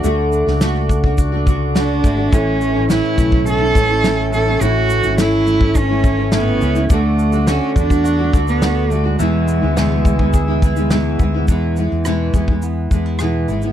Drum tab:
SH |x-x-x-x-x-x-x-x-|x-x-x-x-x-x-x-x-|x-xxx-x-x-x-x-xx|x-xxx-xxx-xxx-x-|
SD |---oo-------o---|----o-------o---|----o-------o---|----o-------o---|
BD |------ooo-o---o-|o-----oo--o-----|-------oo-o-----|o-----oo--o-----|

SH |x-x-x-x-x-xxx-x-|x-x-x-x-x-x-x-xx|
SD |----o-------o---|---rr-------r---|
BD |------ooo-o---o-|o-----oo--o-----|